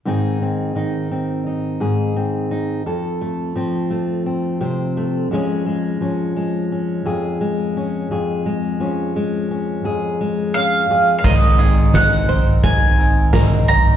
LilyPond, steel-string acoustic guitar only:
\new Staff \with { instrumentName = "Steel-string acoustic guitar" } { \time 4/4 \key aes \mixolydian \tempo 4 = 86 << { <ees c' ees' aes'>8 c'8 ees'8 c'8 ees'8 aes'8 c'8 ees'8 | a'8 a8 c'8 a8 c'8 c''8 a8 <f aes des' aes'>8 | aes8 des'8 aes8 des'8 aes'8 aes8 des'8 aes'8 | aes8 des'8 aes8 des'8 aes'8 aes8 des'8 aes'8 |
r8 ees'4 c'8 ees'2 | } \\ { aes,4 ees4. aes,4. | f,4 f4. c4 f,8~ | f,8 f4. f,4. f,8~ | f,8 f4. f,4. f,8 |
aes,4 ees4 aes,4 aes,8 ges,8 | } >> }